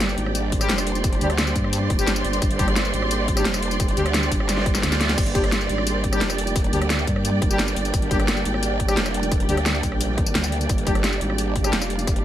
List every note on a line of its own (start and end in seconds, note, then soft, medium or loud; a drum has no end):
0.00 0.16 G1 loud
0.00 12.25 G3 medium
0.00 12.25 A#3 medium
0.00 12.25 D4 medium
0.00 12.25 G4 medium
0.00 5.15 C5 loud
0.00 12.25 D5 medium
0.00 0.60 G5 medium
0.00 snare loud
0.00 closed hi-hat medium
0.00 tambourine medium
0.09 tambourine soft
0.18 0.68 G#1 loud
0.18 closed hi-hat medium
0.26 cross-stick soft
0.35 closed hi-hat medium
0.35 tambourine medium
0.52 kick medium
0.52 closed hi-hat medium
0.58 0.72 G3 medium
0.58 0.72 D4 medium
0.58 0.72 G4 medium
0.58 6.12 C6 medium
0.58 cross-stick soft
0.58 tambourine medium
0.69 1.20 F1 loud
0.69 snare loud
0.69 closed hi-hat medium
0.69 tambourine medium
0.78 cross-stick medium
0.78 tambourine medium
0.87 closed hi-hat medium
0.95 closed hi-hat soft
0.95 tambourine soft
1.04 kick loud
1.04 closed hi-hat medium
1.04 tambourine medium
1.13 closed hi-hat soft
1.21 1.54 D2 loud
1.21 1.28 G3 medium
1.21 1.28 D4 medium
1.21 1.28 G4 medium
1.21 closed hi-hat medium
1.21 tambourine soft
1.30 cross-stick soft
1.30 closed hi-hat soft
1.38 snare loud
1.38 closed hi-hat medium
1.38 tambourine soft
1.47 tambourine soft
1.56 1.89 G2 medium
1.56 kick medium
1.56 closed hi-hat medium
1.56 tambourine soft
1.64 cross-stick soft
1.73 closed hi-hat medium
1.73 tambourine medium
1.90 2.06 F1 loud
1.90 kick loud
1.90 closed hi-hat medium
1.99 2.10 G3 medium
1.99 2.10 D4 medium
1.99 2.10 G4 medium
1.99 tambourine medium
2.07 2.23 G1 loud
2.07 snare loud
2.07 closed hi-hat medium
2.07 tambourine medium
2.16 tambourine medium
2.25 2.41 G1 loud
2.25 closed hi-hat medium
2.33 closed hi-hat soft
2.33 tambourine soft
2.42 2.92 G1 loud
2.42 kick loud
2.42 closed hi-hat medium
2.42 tambourine medium
2.51 closed hi-hat soft
2.59 2.66 G3 medium
2.59 2.66 D4 medium
2.59 2.66 G4 medium
2.59 kick loud
2.59 closed hi-hat medium
2.59 tambourine soft
2.68 cross-stick soft
2.68 closed hi-hat soft
2.76 snare loud
2.76 closed hi-hat loud
2.76 tambourine medium
2.85 tambourine soft
2.94 3.44 G#1 loud
2.94 closed hi-hat medium
3.02 cross-stick soft
3.11 closed hi-hat loud
3.11 tambourine medium
3.28 kick medium
3.28 closed hi-hat medium
3.37 3.48 G3 medium
3.37 3.48 D4 medium
3.37 3.48 G4 medium
3.37 cross-stick soft
3.37 tambourine medium
3.45 3.96 F1 loud
3.45 snare loud
3.45 closed hi-hat loud
3.45 tambourine medium
3.54 cross-stick soft
3.54 tambourine medium
3.63 closed hi-hat medium
3.71 closed hi-hat soft
3.71 tambourine soft
3.80 kick loud
3.80 closed hi-hat loud
3.80 tambourine medium
3.88 closed hi-hat soft
3.97 4.30 D2 loud
3.97 4.04 G3 medium
3.97 4.04 D4 medium
3.97 4.04 G4 medium
3.97 closed hi-hat medium
3.97 tambourine soft
4.06 cross-stick soft
4.06 closed hi-hat soft
4.14 snare loud
4.14 closed hi-hat loud
4.14 tambourine medium
4.23 tambourine soft
4.32 4.82 G1 loud
4.32 kick medium
4.32 closed hi-hat medium
4.32 tambourine soft
4.40 cross-stick soft
4.49 snare medium
4.49 closed hi-hat loud
4.49 tambourine medium
4.57 snare medium
4.66 kick loud
4.66 closed hi-hat medium
4.75 snare medium
4.75 tambourine medium
4.83 5.16 D2 medium
4.83 snare medium
4.83 closed hi-hat loud
4.83 tambourine medium
4.92 snare medium
4.92 tambourine medium
5.01 snare loud
5.01 closed hi-hat medium
5.09 snare medium
5.09 closed hi-hat soft
5.09 tambourine soft
5.18 5.68 G1 loud
5.18 10.67 A#4 medium
5.18 kick loud
5.18 closed hi-hat medium
5.18 tambourine soft
5.18 crash medium
5.26 closed hi-hat soft
5.35 5.42 G3 medium
5.35 5.42 D4 medium
5.35 5.42 G4 medium
5.35 kick loud
5.35 closed hi-hat medium
5.35 tambourine soft
5.44 cross-stick soft
5.44 closed hi-hat soft
5.52 snare loud
5.52 closed hi-hat loud
5.52 tambourine soft
5.61 tambourine soft
5.69 6.20 G#1 medium
5.69 closed hi-hat medium
5.78 cross-stick soft
5.87 closed hi-hat loud
5.87 tambourine medium
6.04 kick medium
6.04 closed hi-hat medium
6.10 6.24 G3 medium
6.10 6.24 D4 medium
6.10 6.24 G4 medium
6.10 11.64 G5 medium
6.10 cross-stick soft
6.10 tambourine medium
6.21 6.72 F1 loud
6.21 snare loud
6.21 closed hi-hat loud
6.21 tambourine medium
6.30 cross-stick medium
6.30 tambourine medium
6.38 closed hi-hat medium
6.47 closed hi-hat soft
6.47 tambourine soft
6.56 kick loud
6.56 closed hi-hat medium
6.56 tambourine soft
6.64 closed hi-hat soft
6.73 7.06 D2 loud
6.73 6.80 G3 medium
6.73 6.80 D4 medium
6.73 6.80 G4 medium
6.73 closed hi-hat medium
6.73 tambourine soft
6.82 cross-stick soft
6.82 closed hi-hat soft
6.90 snare loud
6.90 closed hi-hat loud
6.90 tambourine soft
6.99 tambourine soft
7.07 7.41 G2 loud
7.07 kick medium
7.07 closed hi-hat medium
7.07 tambourine soft
7.16 cross-stick soft
7.25 closed hi-hat medium
7.25 tambourine soft
7.42 7.58 F1 loud
7.42 kick loud
7.42 closed hi-hat medium
7.50 7.62 G3 medium
7.50 7.62 D4 medium
7.50 7.62 G4 medium
7.50 tambourine medium
7.59 7.75 G1 loud
7.59 snare loud
7.59 closed hi-hat medium
7.59 tambourine soft
7.68 tambourine medium
7.76 7.92 G1 loud
7.76 closed hi-hat medium
7.85 closed hi-hat soft
7.85 tambourine soft
7.94 8.44 G1 loud
7.94 kick loud
7.94 closed hi-hat medium
7.94 tambourine soft
8.02 closed hi-hat soft
8.11 8.18 G3 medium
8.11 8.18 D4 medium
8.11 8.18 G4 medium
8.11 kick loud
8.11 closed hi-hat medium
8.11 tambourine soft
8.20 cross-stick soft
8.20 closed hi-hat soft
8.28 snare loud
8.28 closed hi-hat medium
8.28 tambourine soft
8.37 tambourine soft
8.45 8.96 G#1 loud
8.45 closed hi-hat medium
8.54 cross-stick soft
8.63 closed hi-hat medium
8.63 tambourine soft
8.80 kick medium
8.80 closed hi-hat medium
8.88 9.00 G3 medium
8.88 9.00 D4 medium
8.88 9.00 G4 medium
8.88 cross-stick medium
8.88 tambourine medium
8.97 9.47 F1 medium
8.97 snare loud
8.97 closed hi-hat medium
8.97 tambourine soft
9.06 cross-stick medium
9.06 tambourine medium
9.14 closed hi-hat medium
9.23 closed hi-hat soft
9.23 tambourine soft
9.32 kick loud
9.32 closed hi-hat medium
9.32 tambourine soft
9.40 closed hi-hat soft
9.49 9.82 D2 loud
9.49 9.56 G3 medium
9.49 9.56 D4 medium
9.49 9.56 G4 medium
9.49 closed hi-hat medium
9.49 tambourine soft
9.57 cross-stick soft
9.57 closed hi-hat soft
9.66 snare loud
9.66 closed hi-hat medium
9.66 tambourine soft
9.75 tambourine soft
9.83 10.34 A#1 medium
9.83 kick medium
9.83 closed hi-hat medium
9.83 tambourine soft
9.92 cross-stick soft
10.01 closed hi-hat medium
10.01 tambourine soft
10.18 kick loud
10.18 closed hi-hat medium
10.26 tambourine medium
10.35 10.68 D2 medium
10.35 snare loud
10.35 closed hi-hat medium
10.35 tambourine soft
10.44 tambourine medium
10.52 closed hi-hat medium
10.61 closed hi-hat soft
10.61 tambourine soft
10.69 11.20 G1 loud
10.69 12.25 G4 medium
10.69 kick loud
10.69 closed hi-hat medium
10.69 tambourine soft
10.78 closed hi-hat soft
10.87 10.94 G3 medium
10.87 10.94 D4 medium
10.87 10.94 G4 medium
10.87 kick loud
10.87 closed hi-hat medium
10.87 tambourine soft
10.95 cross-stick soft
10.95 closed hi-hat soft
11.04 snare loud
11.04 closed hi-hat medium
11.04 tambourine soft
11.13 tambourine soft
11.21 11.72 G#1 loud
11.21 closed hi-hat medium
11.30 cross-stick soft
11.38 closed hi-hat medium
11.38 tambourine medium
11.56 kick medium
11.56 closed hi-hat medium
11.62 11.76 G3 medium
11.62 11.76 D4 medium
11.62 11.76 G4 medium
11.62 12.25 F5 medium
11.62 cross-stick soft
11.62 tambourine medium
11.73 12.23 F1 loud
11.73 snare loud
11.73 closed hi-hat medium
11.73 tambourine soft
11.82 cross-stick soft
11.82 tambourine medium
11.90 closed hi-hat medium
11.99 closed hi-hat soft
11.99 tambourine soft
12.07 kick loud
12.07 closed hi-hat medium
12.07 tambourine medium
12.16 closed hi-hat soft